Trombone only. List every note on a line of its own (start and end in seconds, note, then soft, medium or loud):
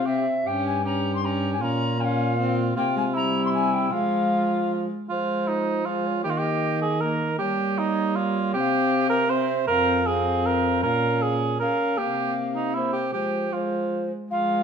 0.00 0.25 C3 medium
0.46 1.63 G2 medium
1.61 2.78 A#2 medium
2.77 3.92 C3 medium
3.92 4.88 F3 medium
5.10 6.26 F3 medium
6.25 7.39 D#3 medium
7.40 8.56 G3 medium
8.54 9.68 C3 medium
9.69 10.85 F2 medium
10.83 11.71 A#2 medium
11.99 13.11 C3 medium
13.14 14.10 F3 soft
14.31 14.63 F3 medium